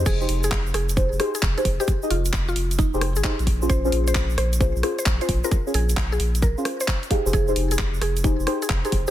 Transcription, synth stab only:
X:1
M:4/4
L:1/16
Q:"Swing 16ths" 1/4=132
K:Fm
V:1 name="Synth stab"
[EGAc] [EGAc]6- [EGAc] [EGAc]2 [EGAc] z2 [EGAc] z [EGAc] | z [EGAe] z6 z [EGAc] z2 [EGAc] z2 [DFAc]- | [DFAc] [DFAc]6- [DFAc] [DFAc]2 [DFAc] z2 [DFAc] z [DFAc] | z [DFAd] z6 z [DFAc] z4 [EGAf] [EGAc]- |
[EGAc] [EGAc]6- [EGAc] [EGAc]2 [EGAc] z2 [EGAc] z [EGAc] |]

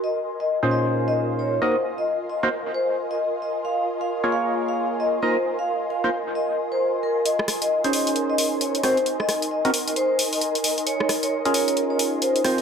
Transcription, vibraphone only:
X:1
M:4/4
L:1/16
Q:"Swing 16ths" 1/4=133
K:Bbm
V:1 name="Vibraphone"
e2 z e2 z e2 z e2 z d z c2 | z e2 z e2 z2 c2 z e2 z e z | f2 z f2 z f2 z f2 z e z c2 | z f2 z f2 z2 e2 z c2 z B z |
e2 z e2 z e2 z e2 z d z c2 | z e2 z e2 z2 c2 z e2 z e z | d2 z d2 z d2 z d2 z c z B2 |]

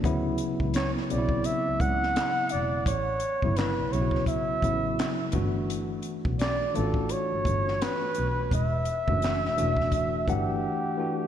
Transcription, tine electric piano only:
X:1
M:4/4
L:1/16
Q:"Swing 16ths" 1/4=85
K:Edor
V:1 name="Tine electric piano"
[C,F,B,E]4- [C,F,B,E] z [C,F,B,=CE]6- [^C,F,B,=CE] z3 | z3 [C,F,B,E]3 [C,F,B,EF]3 z [C,F,B,E]3 z [E,A,DF]2- | [E,A,DF]4- [E,A,DF] z [E,A,D=F^F]6- [E,A,D=F^F] z3 | z3 [E,A,DF]3 [E,A,DF]3 z [E,A,Df]3 z [E,A,DF]2 |]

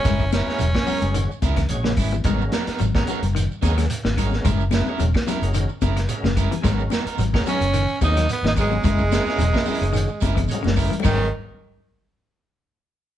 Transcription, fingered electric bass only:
X:1
M:4/4
L:1/16
Q:"Swing 16ths" 1/4=109
K:G#m
V:1 name="Fingered electric bass" clef=bass
F,,,3 z E,,, z2 F,,,2 z C,,2 A,,,2 G,,,2 | G,,,2 z2 G,,,2 z F,,,2 z D,,2 z G,,,3 | F,,,3 z E,,, z2 F,,,2 z F,,,2 z F,,,2 z | G,,,2 z2 G,,,2 z F,,,2 z D,,2 z G,,,3 |
F,,,3 z E,,, z2 F,,,2 z F,,,2 z F,,,2 z | G,,,2 z12 z2 |]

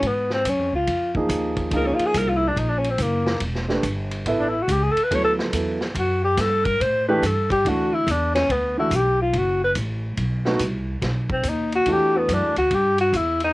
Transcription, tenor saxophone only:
X:1
M:4/4
L:1/16
Q:"Swing" 1/4=142
K:Amix
V:1 name="Tenor saxophone"
B,2 =C2 ^C2 ^E4 z6 | ^A C ^E ^G A E =E D _E D C =C ^A,4 | z8 z D E F G ^G A B | c A z6 F2 G2 A2 _B2 |
=c2 B2 A2 G2 F2 E2 D2 ^C2 | [K:G] B,2 E2 G2 =F2 ^F2 B2 z4 | z8 z2 C2 ^D2 F2 | G2 B,2 D2 F2 G2 F2 E2 _E2 |]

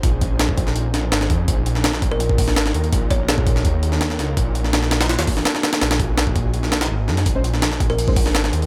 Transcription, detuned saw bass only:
X:1
M:4/4
L:1/16
Q:1/4=166
K:Ebdor
V:1 name="Detuned saw bass" clef=bass
B,,,12 A,,,2 F,,2 | B,,,12 A,,,2 E,,2 | B,,,8 E,,6 D,,2 | B,,,8- B,,, E,, B,,,2 z4 |
B,,,12 A,,,2 G,,2 | B,,,12 A,,,2 E,,2 |]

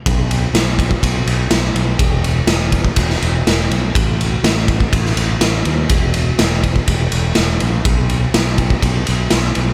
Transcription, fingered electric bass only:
X:1
M:4/4
L:1/8
Q:1/4=123
K:E
V:1 name="Fingered electric bass" clef=bass
B,,,2 B,,,2 B,,, B,,, B,,, B,,, | E,,,2 E,,,2 E,,, E,,, E,,, B,,, | A,,,2 A,,,2 A,,, A,,, A,,, D,, | E,,,2 E,,,2 E,,, E,,, E,,, ^A,,, |
B,,,2 B,,,2 B,,, B,,, B,,, B,,, |]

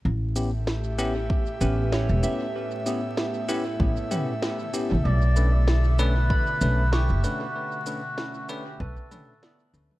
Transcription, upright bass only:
X:1
M:4/4
L:1/16
Q:"Swing 16ths" 1/4=96
K:Amix
V:1 name="Upright bass" clef=bass
A,,,8 z2 A,,,3 E,,, z2 | z8 A,,, z6 A,,, | B,,,8 z2 B,,,3 F,,, z2 | z8 B,,, z4 z D,, z |]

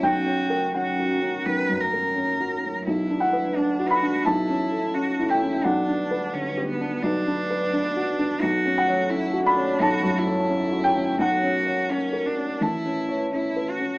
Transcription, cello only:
X:1
M:4/4
L:1/8
Q:1/4=86
K:F#phr
V:1 name="Cello"
F2 F2 B ^A3 | E2 D F E2 F E | D2 C B, D4 | F2 E D F E3 |
F2 C D E2 E F |]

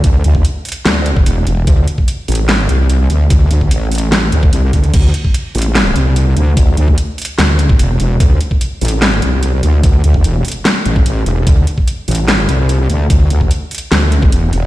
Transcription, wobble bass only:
X:1
M:4/4
L:1/8
Q:1/4=147
K:Cmix
V:1 name="Wobble bass" clef=bass
D,, D,, z2 D,,2 E,,, E,,, | D,, z2 A,,,2 C,,2 D,, | D,, D,, A,,,3 D,, C,, D,, | D,, z2 A,,,2 C,,2 D,, |
D,, D,, z2 D,,2 E,,, E,,, | D,, z2 A,,,2 C,,2 D,, | D,, D,, E,,, z2 A,,,2 E,,, | D,, z2 A,,,2 C,,2 D,, |
D,, D,, z2 D,,2 E,,, E,,, |]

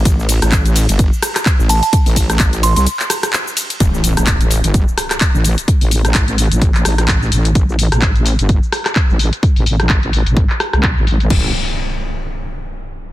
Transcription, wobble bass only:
X:1
M:4/4
L:1/16
Q:"Swing 16ths" 1/4=128
K:Am
V:1 name="Wobble bass" clef=bass
A,,,3 A,,,4 G,,,2 z4 A,,,2 z | z A,,,3 A,,,3 C,, z8 | A,,,3 A,,,4 G,,,2 z4 A,,,2 z | z A,,,3 A,,,3 A,,,3 A,,,4 A,,,2 |
A,,,3 A,,,4 G,,,2 z4 A,,,2 z | z A,,,3 A,,,3 A,,,2 z2 C,,2 A,,,3 | A,,,2 z12 z2 |]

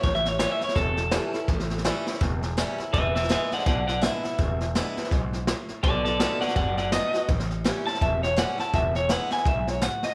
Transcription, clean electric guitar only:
X:1
M:4/4
L:1/8
Q:"Swing" 1/4=166
K:Emix
V:1 name="Clean electric guitar"
(3c e c (3c e c A4- | A2 z6 | [Be] [Be] [Be] [df] [df] [df] e2- | e2 z6 |
[Ad] [Ad] [Ad] [df] [df] [df] ^d2 | z3 a e c f a | e c f g e c f ^d |]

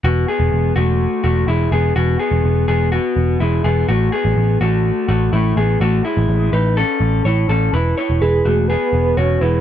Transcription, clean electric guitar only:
X:1
M:4/4
L:1/8
Q:1/4=125
K:E
V:1 name="Clean electric guitar"
[B,F] [B,G]2 [A,F]2 [A,F] [G,E] [B,G] | [B,F] [B,G]2 [B,G] [B,F]2 [G,E] [B,G] | [A,F] [B,G]2 [A,F]2 [A,F] [A,E] [B,G] | [A,F] [G,E]2 [DB] [CA]2 [Ec] [CA] |
[EB] [Ec] [EB] [A,F] [B,G]2 [B,F] [G,E] |]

